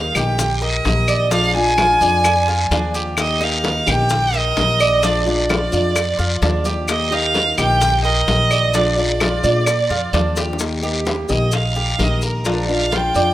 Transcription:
Already playing: D#3 A#3 D#4 G4 F5
0.15 A#1 A#3 D#4 G4 G5, high conga, low conga, short guiro, claves, maracas
0.38 muted nylon-string guitar stroke, high bongo, high conga, low conga, long guiro, maracas
0.62 A#4 D#5, high bongo, high conga, maracas
0.84 A#1 D#3 A#3 D#4 G4, high bongo, low bongo, high conga, short guiro, maracas
1.08 D5, high bongo, high conga, short guiro, claves, maracas
1.31 F3 G#3 D4 F4 F5, high bongo, high conga, long guiro, maracas
1.55 G#3 D4 F4 G#5, high bongo, high conga, maracas
1.77 F3 G#3 D4 F4, high bongo, high conga, short guiro, claves, maracas
2.01 F2 G#3 D4 F4 D5, short guiro, maracas
2.24 muted nylon-string guitar stroke, high bongo, high conga, long guiro, claves, maracas
2.48 F4, high bongo, high conga, maracas
2.71 D#2 F3 G#3 D4 F4, high bongo, low bongo, high conga, short guiro, maracas
2.94 G4, high bongo, short guiro, maracas
3.17 D#3 A#3 D#4 G4 D#5, high bongo, high conga, long guiro, claves, maracas
3.40 A#3 D#4 G4 F5, high bongo, high conga, maracas
3.63 D#3 A#3 D#4 G4, high bongo, high conga, short guiro, maracas
3.86 A#1 A#3 D#4 G4 G5, high conga, low conga, short guiro, claves, maracas
4.09 muted nylon-string guitar stroke, high bongo, high conga, low conga, long guiro, maracas
4.33 A#4 D#5, high bongo, high conga, maracas
4.56 A#1 D#3 A#3 D#4 G4, high bongo, low bongo, high conga, short guiro, maracas
4.80 D5, high bongo, short guiro, claves, maracas
5.03 F3 G#3 D4 F4 D5, high bongo, high conga, long guiro, maracas
5.26 G#3 D4 F4 D5, high bongo, high conga, maracas
5.49 F3 G#3 D4 F4, high bongo, high conga, short guiro, claves, maracas
5.72 F2 G#3 D4 F4 D5, short guiro, maracas
5.96 muted nylon-string guitar stroke, high bongo, high conga, long guiro, claves, maracas
6.19 F2 F4, high bongo, high conga, maracas
6.42 D#2 F3 G#3 D4 F4, high bongo, low bongo, high conga, short guiro, maracas
6.65 G4, high bongo, high conga, short guiro, maracas
6.88 D#3 A#3 D#4 G4 D#5, high bongo, high conga, long guiro, claves, maracas
7.11 A#3 D#4 G4 F5, high bongo, high conga, maracas
7.34 D#3 A#3 D#4 G4, high bongo, high conga, short guiro, maracas
7.58 A#1 A#3 D#4 G4 G5, high conga, low conga, short guiro, claves, maracas
7.81 muted nylon-string guitar stroke, high bongo, high conga, low conga, long guiro, maracas
8.04 A#4 D#5, high bongo, high conga, maracas
8.27 A#1 D#3 A#3 D#4 G4, high bongo, low bongo, high conga, short guiro, maracas
8.51 D5, high bongo, short guiro, claves, maracas
8.74 F3 G#3 D4 F4 D5, high bongo, high conga, long guiro, maracas
8.97 G#3 D4 F4 D5, high bongo, high conga, maracas
9.20 F3 G#3 D4 F4, high bongo, high conga, short guiro, claves, maracas
9.43 A#2 G#3 D4 F4 D5, short guiro, maracas
9.66 muted nylon-string guitar stroke, high bongo, high conga, long guiro, claves, maracas
9.89 F2 F4, high bongo, high conga, maracas
10.13 D#2 F3 G#3 D4 F4, high bongo, low bongo, high conga, short guiro, maracas
10.36 G4, high bongo, short guiro, maracas
10.53 low bongo
10.59 D#3 A#3 D#4 G4, high bongo, high conga, long guiro, maracas
10.82 A#3 D#4 G4, high conga, maracas
11.05 D#3 A#3 D#4 G4, high bongo, high conga, short guiro, maracas
11.28 A#1 A#3 D#4 G4 D#5, high bongo, high conga, low conga, short guiro, maracas
11.51 F5, muted nylon-string guitar stroke, high bongo, high conga, long guiro, maracas
11.75 G4, high bongo, high conga, maracas
11.98 A#1 D#3 A#3 D#4 G4 A#4, high bongo, low bongo, high conga, short guiro, maracas
12.03 D#5
12.22 A#4, high bongo, short guiro, maracas
12.44 F3 G#3 D4 F4, high bongo, high conga, long guiro, maracas
12.67 G#3 D4 F4, high conga, maracas
12.72 F5
12.91 F3 G#3 D4 F4 G5, high bongo, high conga, short guiro, maracas
13.14 F2 G#3 D4 F4 D5, high bongo, high conga, short guiro, maracas

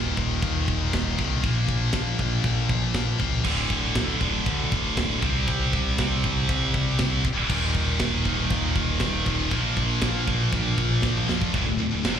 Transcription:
Already playing: D#1 D#2 A#2 D#3 D#4 A#4 F5
0.17 D#1, kick
0.42 D#2, kick, china
0.68 D#1, kick
0.93 D#1, kick, snare, china
1.17 C2 D#2 A#2 D#3, kick
1.43 A#1 A#2 F3 A#3 F4 C5, kick, china
1.68 A#1, kick
1.93 A#1, kick, snare, china
2.19 A#1, kick
2.44 A#1, kick, china
2.69 A#1, kick
2.95 A#1, kick, snare, china
3.18 C#2 A#2 F3 A#3, kick
3.43 D1 D2 A2 D3, kick, china, crash
3.47 D4 A4 D5
3.70 kick
3.95 D1, kick, snare, china
4.19 D1 A2 D3, kick
4.24 D2
4.46 D2, kick, china
4.72 D1, kick
4.97 D1, kick, snare, china
5.20 C2 C3 G3 C4 G4, kick
5.25 C4 D5
5.48 C2, kick, china
5.73 C2, kick
5.96 C2 C3 G3, kick, snare, china
6.01 C4
6.24 C2, kick
6.49 C2, kick, china
6.74 C2, kick
6.99 C2 C3 G3 C4, kick, snare, china
7.24 D1, kick
7.48 D#1 D#2 A#2 D#3 D#4 A#4 F5, kick, crash, china
7.75 kick
8.00 D#1, kick, snare, china
8.25 D#1 D#2 A#2 D#3, kick
8.50 D#2, kick, china
8.76 D#1, kick
9.00 D#1, kick, snare, china
9.24 D#1 D#2 A#2 D#3, kick
9.50 A#1 A#2 F3 A#3 F4 C5, kick, china
9.77 A#1, kick
10.02 A#1, kick, snare, china
10.26 A#1 A#2 F3 A#3, kick
10.52 A#1, kick, china
10.78 A#1, kick
11.02 A#1, kick, snare
11.17 mid tom
11.27 F2 A#2 F3 A#3, snare
11.42 kick
11.52 D1 D2 A2 D4 A4 D5, kick, china
11.64 D1 D2 A2
11.78 D1 D2 A2
11.91 D1 D2 A2
12.03 F1 F2 C3, snare, china
12.16 D1 D2 A2

